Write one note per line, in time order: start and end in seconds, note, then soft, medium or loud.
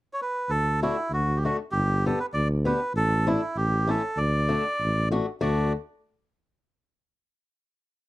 0.13 0.20 C#5 medium
0.22 0.51 B4 medium
0.49 0.89 D2 medium
0.49 0.80 A4 medium
0.83 0.96 A3 soft
0.83 0.96 D4 soft
0.83 1.12 E4 medium
0.83 0.96 F#4 medium
1.10 1.50 D2 medium
1.10 1.38 F#4 medium
1.37 1.44 G4 soft
1.44 1.57 A3 soft
1.44 1.57 D4 soft
1.44 1.57 F#4 medium
1.44 1.58 F#4 soft
1.72 2.12 G1 medium
1.72 2.06 G4 medium
2.06 2.18 B3 soft
2.06 2.18 D4 soft
2.06 2.19 G4 medium
2.06 2.19 A4 medium
2.20 2.26 B4 medium
2.34 2.73 D2 medium
2.34 2.48 D5 medium
2.65 2.79 B3 medium
2.65 2.79 D4 soft
2.65 2.79 G4 medium
2.65 2.93 B4 medium
2.95 3.34 A1 loud
2.95 3.29 A4 loud
3.27 3.40 A3 medium
3.27 3.40 D4 soft
3.27 3.57 E4 medium
3.27 3.40 E4 medium
3.56 3.96 A1 medium
3.56 3.90 G4 medium
3.87 4.01 A3 soft
3.87 4.01 C#4 soft
3.87 4.02 E4 medium
3.87 4.19 A4 medium
4.17 4.57 D2 medium
4.17 5.09 D5 medium
4.49 4.63 A3 soft
4.49 4.63 D4 soft
4.49 4.63 F#4 soft
4.80 5.20 A1 medium
5.11 5.25 A3 medium
5.11 5.25 D4 medium
5.11 5.25 F#4 medium
5.41 5.72 D2 medium
5.41 5.72 A3 medium
5.41 5.72 D4 soft
5.41 5.72 F#4 medium
5.41 5.73 D5 medium